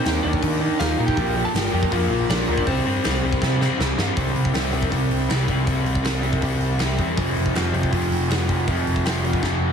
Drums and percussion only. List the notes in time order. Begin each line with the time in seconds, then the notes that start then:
0.05 snare, open hi-hat
0.33 kick
0.43 kick, open hi-hat
0.80 snare, open hi-hat
1.08 kick
1.17 kick, open hi-hat
1.55 snare, open hi-hat
1.83 kick
1.92 kick, open hi-hat
2.29 snare, open hi-hat
2.58 kick
2.67 kick, open hi-hat
3.04 snare, open hi-hat
3.33 kick
3.42 kick, snare
3.61 snare
3.80 snare
3.99 snare
4.17 kick, open hi-hat
4.36 open hi-hat
4.45 kick
4.54 snare, open hi-hat
4.73 open hi-hat
4.83 kick
4.92 kick, open hi-hat
5.11 open hi-hat
5.30 snare, open hi-hat
5.48 kick, open hi-hat
5.67 kick, open hi-hat
5.86 open hi-hat
5.95 kick
6.04 snare, open hi-hat
6.23 open hi-hat
6.33 kick
6.42 kick, open hi-hat
6.61 open hi-hat
6.79 snare, open hi-hat
6.98 kick, open hi-hat
7.17 kick, open hi-hat
7.36 open hi-hat
7.46 kick
7.55 snare, open hi-hat
7.74 open hi-hat
7.83 kick
7.93 kick, open hi-hat
8.12 open hi-hat
8.30 snare, open hi-hat
8.49 kick, open hi-hat
8.68 kick, open hi-hat
8.87 open hi-hat
8.96 kick
9.06 snare, open hi-hat
9.25 open hi-hat
9.33 kick
9.43 kick, snare